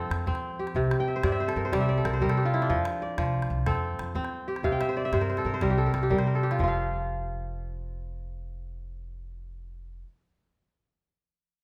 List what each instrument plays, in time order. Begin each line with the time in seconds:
Already playing: kora F3 C4 D4 A4 A#4 D5
0.10 upright bass F2, calabash click
0.26 upright bass F3, kora C4, calabash thump
0.35 calabash click
0.59 kora G4
0.67 calabash click
0.75 upright bass C2, kora C3, calabash thump
0.84 calabash click
0.91 calabash click
1.00 kora G5
1.08 kora E5
1.16 kora C5
1.23 upright bass G2, kora C3 D5, calabash thump, calabash click
1.32 kora E5, calabash click
1.40 kora C5, calabash click
1.48 kora A4, calabash click
1.56 upright bass G2, kora A#4, calabash click
1.65 kora C5
1.72 upright bass C2, kora G3 D5, calabash thump, calabash click
1.80 kora E5, calabash click
1.89 kora D5
1.97 kora A4
2.05 upright bass C2, kora A#4, calabash click
2.13 kora C5
2.20 upright bass C3, kora G3 A#4, calabash thump
2.29 kora A4, calabash click
2.37 kora G4
2.45 kora F4
2.54 kora E4
2.62 kora D4, calabash click
2.70 upright bass F2, kora F3, calabash thump
2.78 calabash click
2.85 calabash click
3.02 kora D5
3.18 upright bass C2, kora F3, calabash thump, calabash click
3.26 calabash click
3.34 calabash click
3.42 calabash click
3.50 upright bass C2, calabash click
3.66 upright bass F2, kora C4 A4, calabash thump, calabash click
3.75 calabash click
3.99 upright bass F2, calabash click
4.15 upright bass F3, kora C4, calabash thump
4.25 calabash click
4.48 kora G4
4.56 calabash click
4.63 upright bass C2, kora C3 F5, calabash thump
4.72 kora G5
4.81 kora E5, calabash click
4.89 kora C5
4.97 kora D5
5.05 kora E5
5.12 upright bass G2, kora C3 C5, calabash thump, calabash click
5.21 kora A#4, calabash click
5.30 kora C5
5.37 kora A4, calabash click
5.45 upright bass G2, kora A#4, calabash click
5.54 kora C5
5.61 upright bass C2, kora G3 A#4, calabash thump, calabash click
5.70 kora G4
5.78 kora A4
5.86 kora A#4
5.94 upright bass C2, kora A4, calabash click
6.02 kora G4, calabash click
6.10 upright bass C3, kora G3 A#4, calabash thump
6.19 kora C5, calabash click
6.27 kora A#4
6.35 kora A4
6.43 kora G4
6.51 kora F4, calabash click
6.59 upright bass F1, kora F3, calabash thump
6.64 kora F4
6.68 kora F5